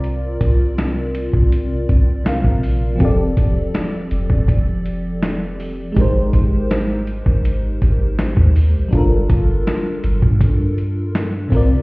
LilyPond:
<<
  \new Staff \with { instrumentName = "FM electric piano" } { \time 4/4 \key g \minor \tempo 4 = 81 <c c' f' bes' d''>2. <c c' f' bes' f''>4 | <f c' g' a' d''>1 | <aes ees' g' bes' c''>1 | <g d' f' a' bes'>2.~ <g d' f' a' bes'>8 <c c' f' bes' d''>8 | }
  \new Staff \with { instrumentName = "808-style bass" } { \clef bass \time 4/4 \key g \minor c,8 c,4~ c,16 c,8. c,8. bes,,8. | f,,8 e,,8 r8 f,,16 f,,2~ f,,16 | aes,,8 aes,,4~ aes,,16 aes,,8. aes,,8. ees,8 bes,,16 | g,,8 g,,8 r8 g,,16 g,4.~ g,16 c,8 | }
  \new DrumStaff \with { instrumentName = "Drums" } \drummode { \time 4/4 hh8 <hh bd>8 <hh sn>8 hh16 bd16 hh8 <hh bd>8 <hh sn>16 bd16 hho8 | <hh bd>8 <hh bd>8 <hh sn>8 hh16 bd16 <hh bd>8 hh8 <hh sn>8 hho8 | <hh bd>8 <hh bd>8 <hh sn>8 hh16 bd16 hh8 <hh bd>8 <hh sn>16 bd16 hho8 | <hh bd>8 <hh bd>8 <hh sn>8 hh16 bd16 <hh bd>8 hh8 <hh sn>8 <hho bd>8 | }
>>